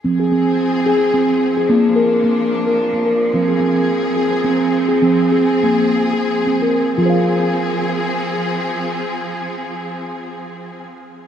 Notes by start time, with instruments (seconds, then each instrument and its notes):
0.04 steel tongue drum F3 C4, string section F3 C4 G#4
0.20 steel tongue drum G#4
0.32 steel tongue drum C4
0.86 steel tongue drum G#4
1.14 steel tongue drum C4
1.57 steel tongue drum G#4
1.69 steel tongue drum A#3, string section A#3 D4
1.96 steel tongue drum A#4
2.24 steel tongue drum A#3
2.67 steel tongue drum A#4
2.93 steel tongue drum A#3
3.06 steel tongue drum A#4
3.34 steel tongue drum F3 C4, string section C4 G#4
3.48 steel tongue drum G#4
3.60 steel tongue drum C4
4.16 steel tongue drum G#4
4.44 steel tongue drum C4
4.89 steel tongue drum G#4
5.02 steel tongue drum F3 C4, string section G#4
5.32 steel tongue drum G#4
5.63 steel tongue drum A#3
6.13 steel tongue drum G#4
6.47 steel tongue drum C4
6.62 steel tongue drum A#4
6.98 steel tongue drum F3 F4, string section F3 C4 G#4
7.02 steel tongue drum G#4 C5
7.10 steel tongue drum F5